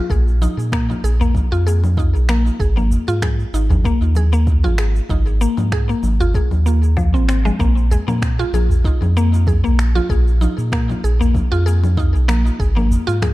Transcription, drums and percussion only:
0.10 kick medium
0.10 cabasa soft
0.28 cabasa soft
0.42 low conga medium
0.42 cabasa medium
0.59 cabasa soft
0.72 finger snap medium
0.72 kick loud
0.72 cabasa soft
0.90 low conga medium
0.90 cabasa soft
1.05 cabasa medium
1.21 udu medium
1.21 cabasa soft
1.35 kick loud
1.35 low conga medium
1.35 cabasa soft
1.53 cabasa soft
1.68 cabasa medium
1.84 low conga medium
1.84 cabasa soft
1.97 kick loud
1.97 cabasa soft
2.16 cabasa soft
2.29 finger snap medium
2.29 low conga medium
2.29 cabasa medium
2.47 cabasa soft
2.60 kick loud
2.60 cabasa soft
2.77 low conga medium
2.77 cabasa soft
2.91 udu medium
2.91 cabasa medium
3.08 cabasa soft
3.22 finger snap medium
3.22 kick loud
3.22 low conga medium
3.22 cabasa soft
3.40 cabasa soft
3.55 cabasa medium
3.70 udu loud
3.70 low conga medium
3.70 cabasa soft
3.85 kick loud
3.85 cabasa soft
4.02 cabasa soft
4.15 low conga medium
4.15 cabasa medium
4.33 cabasa soft
4.47 kick loud
4.47 cabasa soft
4.64 low conga medium
4.64 udu medium
4.64 cabasa soft
4.78 finger snap medium
4.78 cabasa medium
4.96 cabasa soft
5.09 kick loud
5.09 low conga medium
5.09 cabasa soft
5.27 cabasa soft
5.41 cabasa medium
5.57 low conga medium
5.57 cabasa soft
5.72 finger snap medium
5.72 kick loud
5.72 cabasa soft
5.89 cabasa soft
6.03 low conga medium
6.03 cabasa medium
6.21 udu loud
6.21 cabasa soft
6.34 kick loud
6.34 cabasa soft
6.51 low conga medium
6.51 cabasa soft
6.67 cabasa medium
6.84 cabasa soft
6.97 kick loud
6.97 low conga medium
6.97 cabasa soft
7.15 cabasa soft
7.29 finger snap medium
7.29 cabasa medium
7.46 low conga medium
7.46 cabasa soft
7.59 kick loud
7.59 low conga medium
7.59 cabasa soft
7.77 cabasa soft
7.91 udu medium
7.91 cabasa medium
8.08 low conga medium
8.08 cabasa soft
8.22 finger snap medium
8.22 kick loud
8.22 cabasa soft
8.40 cabasa soft
8.54 low conga medium
8.54 cabasa medium
8.70 udu medium
8.70 cabasa soft
8.84 kick medium
8.84 cabasa soft
9.02 low conga medium
9.02 cabasa soft
9.17 cabasa medium
9.34 cabasa soft
9.47 kick medium
9.47 low conga medium
9.47 cabasa soft
9.63 udu medium
9.63 cabasa soft
9.79 finger snap medium
9.79 cabasa medium
9.95 low conga medium
9.95 cabasa soft
10.09 kick medium
10.09 cabasa soft
10.28 cabasa soft
10.41 low conga medium
10.41 cabasa medium
10.59 cabasa soft
10.72 finger snap medium
10.72 kick loud
10.72 cabasa soft
10.90 low conga medium
10.90 cabasa soft
11.05 cabasa medium
11.21 udu medium
11.21 cabasa soft
11.35 kick medium
11.35 low conga medium
11.35 cabasa soft
11.53 cabasa soft
11.68 cabasa medium
11.84 low conga medium
11.84 cabasa soft
11.97 kick loud
11.97 cabasa soft
12.15 cabasa soft
12.29 finger snap medium
12.29 low conga medium
12.29 cabasa medium
12.46 cabasa soft
12.60 kick medium
12.60 cabasa soft
12.77 low conga medium
12.77 cabasa soft
12.91 udu medium
12.91 cabasa medium
13.09 cabasa soft
13.22 finger snap medium
13.22 kick loud
13.22 low conga medium
13.22 cabasa soft

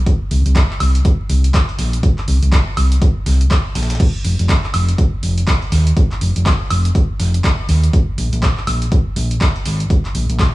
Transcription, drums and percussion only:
0.06 kick loud
0.06 closed hi-hat medium
0.31 closed hi-hat medium
0.31 open hi-hat loud
0.46 closed hi-hat soft
0.46 closed hi-hat medium
0.56 kick loud
0.56 snare loud
0.56 clap loud
0.56 closed hi-hat medium
0.71 clap soft
0.80 closed hi-hat medium
0.80 open hi-hat medium
0.80 high woodblock medium
0.95 closed hi-hat medium
0.95 closed hi-hat soft
1.05 kick loud
1.05 closed hi-hat medium
1.29 closed hi-hat medium
1.29 open hi-hat loud
1.44 closed hi-hat medium
1.54 kick loud
1.54 snare loud
1.54 clap loud
1.54 closed hi-hat medium
1.69 closed hi-hat soft
1.79 snare medium
1.79 closed hi-hat medium
1.79 open hi-hat medium
1.93 closed hi-hat medium
2.03 kick loud
2.03 closed hi-hat medium
2.18 clap soft
2.18 closed hi-hat soft
2.28 closed hi-hat medium
2.28 open hi-hat loud
2.43 closed hi-hat medium
2.52 kick loud
2.52 snare loud
2.52 clap loud
2.52 closed hi-hat medium
2.77 closed hi-hat medium
2.77 open hi-hat medium
2.77 high woodblock medium
2.92 closed hi-hat soft
2.92 closed hi-hat medium
3.02 kick loud
3.02 closed hi-hat medium
3.26 snare medium
3.26 closed hi-hat medium
3.26 open hi-hat loud
3.41 closed hi-hat medium
3.51 kick loud
3.51 snare loud
3.51 clap loud
3.51 closed hi-hat medium
3.75 snare medium
3.75 closed hi-hat medium
3.75 open hi-hat medium
3.83 snare medium
3.83 closed hi-hat medium
3.90 snare medium
3.90 closed hi-hat medium
3.95 snare medium
3.95 closed hi-hat medium
4.00 kick loud
4.00 closed hi-hat medium
4.00 crash medium
4.25 closed hi-hat medium
4.25 open hi-hat loud
4.39 closed hi-hat soft
4.39 closed hi-hat medium
4.49 kick loud
4.49 snare loud
4.49 clap loud
4.49 closed hi-hat medium
4.64 clap soft
4.74 closed hi-hat medium
4.74 open hi-hat medium
4.74 high woodblock medium
4.88 closed hi-hat medium
4.88 closed hi-hat soft
4.98 kick loud
4.98 closed hi-hat medium
5.23 closed hi-hat medium
5.23 open hi-hat loud
5.38 closed hi-hat medium
5.47 kick loud
5.47 snare loud
5.47 clap loud
5.47 closed hi-hat medium
5.62 closed hi-hat soft
5.72 snare medium
5.72 closed hi-hat medium
5.72 open hi-hat medium
5.87 closed hi-hat medium
5.97 kick loud
5.97 closed hi-hat medium
6.11 clap soft
6.11 closed hi-hat soft
6.21 closed hi-hat medium
6.21 open hi-hat loud
6.36 closed hi-hat medium
6.46 kick loud
6.46 snare loud
6.46 clap loud
6.46 closed hi-hat medium
6.70 closed hi-hat medium
6.70 open hi-hat medium
6.70 high woodblock medium
6.85 closed hi-hat medium
6.85 closed hi-hat soft
6.95 kick loud
6.95 closed hi-hat medium
7.20 snare medium
7.20 closed hi-hat medium
7.20 open hi-hat loud
7.34 closed hi-hat medium
7.44 kick loud
7.44 snare loud
7.44 clap loud
7.44 closed hi-hat medium
7.69 snare soft
7.69 closed hi-hat medium
7.69 open hi-hat medium
7.84 closed hi-hat medium
7.93 kick loud
7.93 closed hi-hat medium
7.93 closed hi-hat soft
8.18 closed hi-hat medium
8.18 open hi-hat loud
8.33 closed hi-hat soft
8.33 closed hi-hat medium
8.42 kick loud
8.42 snare loud
8.42 clap loud
8.42 closed hi-hat medium
8.42 closed hi-hat soft
8.57 clap soft
8.67 closed hi-hat medium
8.67 open hi-hat loud
8.67 high woodblock medium
8.82 closed hi-hat soft
8.82 closed hi-hat medium
8.92 kick loud
8.92 closed hi-hat medium
9.16 closed hi-hat medium
9.16 open hi-hat loud
9.31 closed hi-hat medium
9.41 kick loud
9.41 snare loud
9.41 clap loud
9.41 closed hi-hat medium
9.41 closed hi-hat soft
9.56 closed hi-hat soft
9.66 snare medium
9.66 closed hi-hat medium
9.66 open hi-hat loud
9.80 closed hi-hat medium
9.90 kick loud
9.90 closed hi-hat medium
9.90 closed hi-hat soft
10.05 clap soft
10.05 closed hi-hat soft
10.15 closed hi-hat medium
10.15 open hi-hat loud
10.29 closed hi-hat medium
10.39 kick loud
10.39 snare loud
10.39 clap loud
10.39 closed hi-hat medium
10.39 closed hi-hat soft

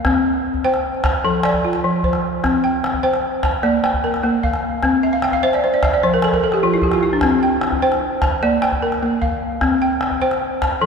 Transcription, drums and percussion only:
0.05 calabash thump medium
0.05 calabash click medium
0.54 calabash thump medium
0.65 calabash click soft
0.74 calabash click medium
0.94 calabash click soft
1.04 calabash thump medium
1.04 calabash click medium
1.43 calabash click medium
1.53 calabash thump medium
1.53 calabash click soft
1.64 calabash click soft
1.73 calabash click medium
2.03 calabash thump medium
2.13 calabash click medium
2.44 calabash thump medium
2.44 calabash click medium
2.84 calabash click medium
2.94 calabash thump soft
3.14 calabash click soft
3.43 calabash thump medium
3.43 calabash click medium
3.63 calabash click soft
3.84 calabash click medium
3.94 calabash thump medium
4.14 calabash click medium
4.43 calabash thump medium
4.43 calabash click soft
4.54 calabash click medium
4.83 calabash thump medium
4.83 calabash click medium
5.22 calabash click medium
5.32 calabash thump soft
5.53 calabash click medium
5.83 calabash thump medium
5.83 calabash click medium
6.02 calabash click soft
6.22 calabash click medium
6.33 calabash thump medium
6.52 calabash click medium
6.82 calabash thump medium
6.82 calabash click soft
6.92 calabash click medium
7.21 calabash thump medium
7.21 calabash click medium
7.61 calabash click medium
7.72 calabash thump medium
7.92 calabash click medium
8.22 calabash thump medium
8.22 calabash click medium
8.43 calabash click soft
8.62 calabash click medium
8.72 calabash thump medium
8.92 calabash click soft
9.22 calabash thump medium
9.22 calabash click soft
9.61 calabash thump medium
9.61 calabash click medium
10.01 calabash click medium
10.11 calabash thump medium
10.31 calabash click medium
10.62 calabash thump medium
10.62 calabash click medium
10.71 calabash click soft
10.81 calabash click soft

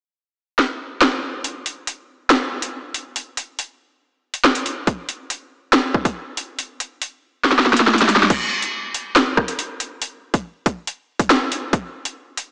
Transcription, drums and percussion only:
0.59 snare medium
1.02 snare loud
1.44 closed hi-hat medium
1.66 closed hi-hat medium
1.87 closed hi-hat medium
2.30 snare loud
2.30 closed hi-hat medium
2.62 closed hi-hat medium
2.94 closed hi-hat medium
3.16 closed hi-hat medium
3.37 closed hi-hat medium
3.59 closed hi-hat medium
4.34 closed hi-hat medium
4.45 snare loud
4.55 closed hi-hat medium
4.66 closed hi-hat medium
4.87 kick loud
4.87 closed hi-hat medium
5.09 closed hi-hat medium
5.30 closed hi-hat medium
5.73 snare loud
5.73 closed hi-hat medium
5.94 kick loud
6.05 kick medium
6.05 closed hi-hat medium
6.37 closed hi-hat medium
6.59 closed hi-hat medium
6.80 closed hi-hat medium
7.02 closed hi-hat medium
7.44 snare medium
7.52 snare soft
7.59 snare medium
7.66 snare medium
7.73 snare medium
7.73 closed hi-hat medium
7.80 snare medium
7.87 snare medium
7.94 snare medium
7.94 closed hi-hat medium
8.02 snare medium
8.09 snare medium
8.09 closed hi-hat medium
8.16 snare loud
8.23 snare medium
8.30 kick loud
8.30 closed hi-hat medium
8.30 crash loud
8.62 closed hi-hat medium
8.94 closed hi-hat medium
9.16 snare loud
9.16 closed hi-hat medium
9.37 kick loud
9.37 cross-stick medium
9.48 closed hi-hat medium
9.59 closed hi-hat medium
9.80 closed hi-hat medium
10.02 closed hi-hat medium
10.34 kick medium
10.34 closed hi-hat medium
10.66 kick loud
10.66 closed hi-hat medium
10.87 closed hi-hat medium
11.19 kick medium
11.19 closed hi-hat medium
11.30 snare loud
11.30 closed hi-hat medium
11.52 closed hi-hat medium
11.73 kick loud
11.73 closed hi-hat medium
12.05 closed hi-hat medium
12.37 closed hi-hat medium

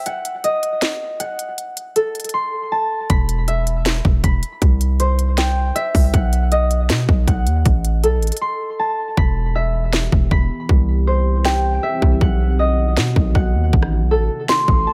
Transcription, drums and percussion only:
0.06 closed hi-hat medium
0.25 closed hi-hat medium
0.44 closed hi-hat medium
0.63 closed hi-hat medium
0.82 snare loud
0.82 closed hi-hat medium
1.20 closed hi-hat medium
1.39 closed hi-hat medium
1.58 closed hi-hat medium
1.77 closed hi-hat medium
1.96 closed hi-hat medium
2.15 closed hi-hat soft
2.20 closed hi-hat medium
2.24 closed hi-hat medium
2.29 closed hi-hat medium
3.10 kick loud
3.10 closed hi-hat medium
3.29 closed hi-hat medium
3.48 closed hi-hat medium
3.67 closed hi-hat medium
3.86 snare loud
3.86 closed hi-hat medium
4.05 kick medium
4.24 kick medium
4.24 closed hi-hat medium
4.43 closed hi-hat medium
4.62 kick loud
4.62 closed hi-hat medium
4.81 closed hi-hat medium
5.00 closed hi-hat medium
5.19 closed hi-hat medium
5.38 snare loud
5.38 closed hi-hat medium
5.76 closed hi-hat medium
5.95 kick medium
5.95 open hi-hat medium
6.14 kick loud
6.14 closed hi-hat medium
6.33 closed hi-hat medium
6.52 closed hi-hat medium
6.71 closed hi-hat medium
6.90 snare loud
6.90 closed hi-hat medium
7.09 kick medium
7.28 kick medium
7.28 closed hi-hat medium
7.47 closed hi-hat medium
7.66 kick loud
7.66 closed hi-hat medium
7.85 closed hi-hat medium
8.04 closed hi-hat medium
8.22 closed hi-hat soft
8.27 closed hi-hat medium
8.32 closed hi-hat medium
8.37 closed hi-hat medium
9.17 kick loud
9.93 snare loud
10.12 kick medium
10.31 kick medium
10.69 kick loud
11.45 snare loud
12.02 kick loud
12.21 kick loud
12.97 snare loud
13.16 kick medium
13.35 kick medium
13.73 kick loud
13.83 cross-stick medium
14.49 snare loud
14.68 kick medium

